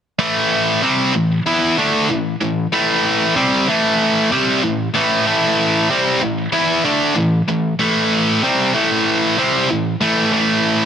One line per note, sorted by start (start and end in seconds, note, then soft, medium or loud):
0.19 0.81 A2 medium
0.19 0.82 E3 medium
0.19 0.82 A3 medium
0.82 1.13 C3 medium
0.82 1.13 G3 loud
0.82 1.14 C4 medium
1.14 1.39 A2 medium
1.14 1.39 E3 medium
1.46 1.77 E3 loud
1.46 1.77 B3 loud
1.46 1.77 E4 loud
1.77 2.08 D3 medium
1.77 2.08 A3 medium
1.77 2.09 D4 loud
2.10 2.35 A2 medium
2.10 2.35 E3 medium
2.41 2.66 A2 medium
2.41 2.66 E3 medium
2.72 3.35 A2 medium
2.72 3.35 E3 medium
2.72 3.35 A3 loud
3.36 3.67 C3 medium
3.36 3.67 G3 medium
3.36 3.67 C4 medium
3.68 4.30 A2 medium
3.68 4.31 E3 medium
3.68 4.31 A3 medium
4.31 4.62 C3 medium
4.31 4.62 G3 medium
4.31 4.62 C4 loud
4.63 4.88 A2 medium
4.63 4.88 E3 medium
4.94 5.25 A2 medium
4.94 5.25 E3 medium
4.94 5.25 A3 loud
5.26 5.88 A2 medium
5.26 5.89 E3 loud
5.26 5.89 A3 medium
5.90 6.20 C3 medium
5.90 6.21 G3 loud
5.90 6.21 C4 medium
6.21 6.47 A2 medium
6.21 6.47 E3 medium
6.52 6.83 E3 loud
6.52 6.84 B3 loud
6.52 6.84 E4 loud
6.85 7.15 D3 medium
6.85 7.15 A3 medium
6.85 7.15 D4 loud
7.15 7.41 A2 medium
7.15 7.41 E3 medium
7.48 7.73 A2 medium
7.48 7.73 E3 medium
7.79 8.42 A2 medium
7.79 8.42 E3 medium
7.79 8.42 A3 medium
8.43 8.73 C3 medium
8.43 8.74 G3 medium
8.43 8.74 C4 loud
8.73 9.36 A2 medium
8.73 9.37 E3 medium
8.73 9.37 A3 medium
9.37 9.68 C3 medium
9.37 9.69 G3 medium
9.37 9.69 C4 loud
9.69 9.95 A2 medium
9.69 9.95 E3 medium
10.01 10.30 A2 medium
10.01 10.31 E3 loud
10.01 10.32 A3 loud
10.32 10.85 A2 medium
10.32 10.85 E3 medium
10.32 10.85 A3 medium